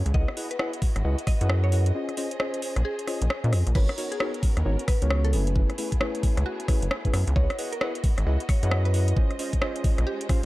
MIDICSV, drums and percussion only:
0, 0, Header, 1, 2, 480
1, 0, Start_track
1, 0, Tempo, 451128
1, 152, Time_signature, 4, 2, 24, 8
1, 11122, End_track
2, 0, Start_track
2, 0, Title_t, "Drums"
2, 62, Note_on_c, 9, 42, 68
2, 152, Note_on_c, 9, 36, 115
2, 169, Note_off_c, 9, 42, 0
2, 258, Note_off_c, 9, 36, 0
2, 302, Note_on_c, 9, 37, 58
2, 392, Note_on_c, 9, 46, 107
2, 408, Note_off_c, 9, 37, 0
2, 499, Note_off_c, 9, 46, 0
2, 541, Note_on_c, 9, 42, 68
2, 631, Note_on_c, 9, 37, 114
2, 648, Note_off_c, 9, 42, 0
2, 738, Note_off_c, 9, 37, 0
2, 781, Note_on_c, 9, 42, 54
2, 871, Note_on_c, 9, 46, 108
2, 872, Note_on_c, 9, 36, 96
2, 887, Note_off_c, 9, 42, 0
2, 977, Note_off_c, 9, 46, 0
2, 978, Note_off_c, 9, 36, 0
2, 1020, Note_on_c, 9, 37, 49
2, 1020, Note_on_c, 9, 42, 67
2, 1127, Note_off_c, 9, 37, 0
2, 1127, Note_off_c, 9, 42, 0
2, 1261, Note_on_c, 9, 42, 54
2, 1351, Note_on_c, 9, 36, 104
2, 1351, Note_on_c, 9, 37, 48
2, 1351, Note_on_c, 9, 46, 103
2, 1367, Note_off_c, 9, 42, 0
2, 1457, Note_off_c, 9, 37, 0
2, 1457, Note_off_c, 9, 46, 0
2, 1458, Note_off_c, 9, 36, 0
2, 1500, Note_on_c, 9, 42, 71
2, 1591, Note_on_c, 9, 37, 114
2, 1607, Note_off_c, 9, 42, 0
2, 1697, Note_off_c, 9, 37, 0
2, 1831, Note_on_c, 9, 46, 113
2, 1938, Note_off_c, 9, 46, 0
2, 1981, Note_on_c, 9, 42, 72
2, 2087, Note_off_c, 9, 42, 0
2, 2221, Note_on_c, 9, 37, 31
2, 2221, Note_on_c, 9, 42, 37
2, 2311, Note_on_c, 9, 46, 109
2, 2327, Note_off_c, 9, 37, 0
2, 2327, Note_off_c, 9, 42, 0
2, 2417, Note_off_c, 9, 46, 0
2, 2461, Note_on_c, 9, 42, 67
2, 2551, Note_on_c, 9, 37, 114
2, 2567, Note_off_c, 9, 42, 0
2, 2658, Note_off_c, 9, 37, 0
2, 2701, Note_on_c, 9, 42, 53
2, 2791, Note_on_c, 9, 46, 114
2, 2807, Note_off_c, 9, 42, 0
2, 2897, Note_off_c, 9, 46, 0
2, 2941, Note_on_c, 9, 37, 51
2, 2941, Note_on_c, 9, 42, 69
2, 3047, Note_off_c, 9, 37, 0
2, 3047, Note_off_c, 9, 42, 0
2, 3181, Note_on_c, 9, 42, 53
2, 3272, Note_on_c, 9, 37, 53
2, 3272, Note_on_c, 9, 46, 106
2, 3287, Note_off_c, 9, 42, 0
2, 3378, Note_off_c, 9, 37, 0
2, 3378, Note_off_c, 9, 46, 0
2, 3421, Note_on_c, 9, 42, 69
2, 3513, Note_on_c, 9, 37, 112
2, 3528, Note_off_c, 9, 42, 0
2, 3619, Note_off_c, 9, 37, 0
2, 3662, Note_on_c, 9, 42, 38
2, 3752, Note_on_c, 9, 37, 61
2, 3752, Note_on_c, 9, 46, 113
2, 3769, Note_off_c, 9, 42, 0
2, 3858, Note_off_c, 9, 37, 0
2, 3858, Note_off_c, 9, 46, 0
2, 3901, Note_on_c, 9, 42, 68
2, 3991, Note_on_c, 9, 36, 121
2, 3991, Note_on_c, 9, 49, 102
2, 4008, Note_off_c, 9, 42, 0
2, 4097, Note_off_c, 9, 49, 0
2, 4098, Note_off_c, 9, 36, 0
2, 4141, Note_on_c, 9, 37, 62
2, 4141, Note_on_c, 9, 42, 37
2, 4232, Note_on_c, 9, 46, 108
2, 4247, Note_off_c, 9, 37, 0
2, 4247, Note_off_c, 9, 42, 0
2, 4338, Note_off_c, 9, 46, 0
2, 4382, Note_on_c, 9, 42, 67
2, 4471, Note_on_c, 9, 37, 120
2, 4488, Note_off_c, 9, 42, 0
2, 4578, Note_off_c, 9, 37, 0
2, 4621, Note_on_c, 9, 42, 51
2, 4712, Note_on_c, 9, 36, 107
2, 4712, Note_on_c, 9, 46, 114
2, 4727, Note_off_c, 9, 42, 0
2, 4818, Note_off_c, 9, 36, 0
2, 4818, Note_off_c, 9, 46, 0
2, 4861, Note_on_c, 9, 37, 55
2, 4861, Note_on_c, 9, 42, 67
2, 4967, Note_off_c, 9, 37, 0
2, 4967, Note_off_c, 9, 42, 0
2, 5100, Note_on_c, 9, 42, 53
2, 5191, Note_on_c, 9, 37, 54
2, 5191, Note_on_c, 9, 46, 106
2, 5192, Note_on_c, 9, 36, 104
2, 5207, Note_off_c, 9, 42, 0
2, 5297, Note_off_c, 9, 37, 0
2, 5297, Note_off_c, 9, 46, 0
2, 5298, Note_off_c, 9, 36, 0
2, 5341, Note_on_c, 9, 42, 67
2, 5431, Note_on_c, 9, 37, 120
2, 5447, Note_off_c, 9, 42, 0
2, 5537, Note_off_c, 9, 37, 0
2, 5581, Note_on_c, 9, 42, 38
2, 5671, Note_on_c, 9, 46, 113
2, 5687, Note_off_c, 9, 42, 0
2, 5777, Note_off_c, 9, 46, 0
2, 5821, Note_on_c, 9, 42, 67
2, 5911, Note_on_c, 9, 36, 127
2, 5927, Note_off_c, 9, 42, 0
2, 6018, Note_off_c, 9, 36, 0
2, 6061, Note_on_c, 9, 37, 33
2, 6061, Note_on_c, 9, 42, 35
2, 6150, Note_on_c, 9, 46, 105
2, 6167, Note_off_c, 9, 37, 0
2, 6167, Note_off_c, 9, 42, 0
2, 6257, Note_off_c, 9, 46, 0
2, 6300, Note_on_c, 9, 36, 67
2, 6301, Note_on_c, 9, 42, 62
2, 6391, Note_on_c, 9, 37, 125
2, 6407, Note_off_c, 9, 36, 0
2, 6407, Note_off_c, 9, 42, 0
2, 6498, Note_off_c, 9, 37, 0
2, 6541, Note_on_c, 9, 42, 53
2, 6631, Note_on_c, 9, 36, 106
2, 6631, Note_on_c, 9, 46, 113
2, 6648, Note_off_c, 9, 42, 0
2, 6738, Note_off_c, 9, 36, 0
2, 6738, Note_off_c, 9, 46, 0
2, 6782, Note_on_c, 9, 37, 55
2, 6782, Note_on_c, 9, 42, 62
2, 6888, Note_off_c, 9, 37, 0
2, 6888, Note_off_c, 9, 42, 0
2, 7020, Note_on_c, 9, 42, 52
2, 7111, Note_on_c, 9, 36, 114
2, 7111, Note_on_c, 9, 37, 52
2, 7111, Note_on_c, 9, 46, 106
2, 7127, Note_off_c, 9, 42, 0
2, 7217, Note_off_c, 9, 36, 0
2, 7218, Note_off_c, 9, 37, 0
2, 7218, Note_off_c, 9, 46, 0
2, 7261, Note_on_c, 9, 42, 66
2, 7351, Note_on_c, 9, 37, 125
2, 7368, Note_off_c, 9, 42, 0
2, 7458, Note_off_c, 9, 37, 0
2, 7501, Note_on_c, 9, 36, 61
2, 7501, Note_on_c, 9, 42, 35
2, 7592, Note_on_c, 9, 37, 66
2, 7592, Note_on_c, 9, 46, 113
2, 7607, Note_off_c, 9, 36, 0
2, 7607, Note_off_c, 9, 42, 0
2, 7698, Note_off_c, 9, 37, 0
2, 7698, Note_off_c, 9, 46, 0
2, 7740, Note_on_c, 9, 42, 66
2, 7831, Note_on_c, 9, 36, 127
2, 7847, Note_off_c, 9, 42, 0
2, 7937, Note_off_c, 9, 36, 0
2, 7981, Note_on_c, 9, 37, 68
2, 7981, Note_on_c, 9, 42, 36
2, 8071, Note_on_c, 9, 46, 105
2, 8088, Note_off_c, 9, 37, 0
2, 8088, Note_off_c, 9, 42, 0
2, 8177, Note_off_c, 9, 46, 0
2, 8220, Note_on_c, 9, 42, 64
2, 8311, Note_on_c, 9, 37, 123
2, 8327, Note_off_c, 9, 42, 0
2, 8418, Note_off_c, 9, 37, 0
2, 8461, Note_on_c, 9, 42, 52
2, 8551, Note_on_c, 9, 46, 108
2, 8552, Note_on_c, 9, 36, 115
2, 8568, Note_off_c, 9, 42, 0
2, 8658, Note_off_c, 9, 36, 0
2, 8658, Note_off_c, 9, 46, 0
2, 8701, Note_on_c, 9, 37, 53
2, 8701, Note_on_c, 9, 42, 63
2, 8807, Note_off_c, 9, 37, 0
2, 8807, Note_off_c, 9, 42, 0
2, 8941, Note_on_c, 9, 42, 51
2, 9032, Note_on_c, 9, 36, 114
2, 9032, Note_on_c, 9, 37, 53
2, 9032, Note_on_c, 9, 46, 102
2, 9048, Note_off_c, 9, 42, 0
2, 9138, Note_off_c, 9, 36, 0
2, 9138, Note_off_c, 9, 37, 0
2, 9138, Note_off_c, 9, 46, 0
2, 9181, Note_on_c, 9, 42, 64
2, 9272, Note_on_c, 9, 37, 127
2, 9288, Note_off_c, 9, 42, 0
2, 9378, Note_off_c, 9, 37, 0
2, 9421, Note_on_c, 9, 42, 35
2, 9511, Note_on_c, 9, 46, 106
2, 9527, Note_off_c, 9, 42, 0
2, 9618, Note_off_c, 9, 46, 0
2, 9661, Note_on_c, 9, 42, 65
2, 9752, Note_on_c, 9, 36, 127
2, 9767, Note_off_c, 9, 42, 0
2, 9858, Note_off_c, 9, 36, 0
2, 9901, Note_on_c, 9, 37, 31
2, 9901, Note_on_c, 9, 42, 36
2, 9992, Note_on_c, 9, 46, 99
2, 10008, Note_off_c, 9, 37, 0
2, 10008, Note_off_c, 9, 42, 0
2, 10099, Note_off_c, 9, 46, 0
2, 10142, Note_on_c, 9, 36, 66
2, 10142, Note_on_c, 9, 42, 64
2, 10232, Note_on_c, 9, 37, 122
2, 10248, Note_off_c, 9, 36, 0
2, 10248, Note_off_c, 9, 42, 0
2, 10338, Note_off_c, 9, 37, 0
2, 10382, Note_on_c, 9, 42, 52
2, 10472, Note_on_c, 9, 36, 113
2, 10472, Note_on_c, 9, 46, 102
2, 10488, Note_off_c, 9, 42, 0
2, 10578, Note_off_c, 9, 46, 0
2, 10579, Note_off_c, 9, 36, 0
2, 10622, Note_on_c, 9, 37, 50
2, 10622, Note_on_c, 9, 42, 62
2, 10728, Note_off_c, 9, 37, 0
2, 10728, Note_off_c, 9, 42, 0
2, 10862, Note_on_c, 9, 42, 52
2, 10952, Note_on_c, 9, 36, 115
2, 10952, Note_on_c, 9, 37, 51
2, 10952, Note_on_c, 9, 46, 100
2, 10968, Note_off_c, 9, 42, 0
2, 11059, Note_off_c, 9, 36, 0
2, 11059, Note_off_c, 9, 37, 0
2, 11059, Note_off_c, 9, 46, 0
2, 11122, End_track
0, 0, End_of_file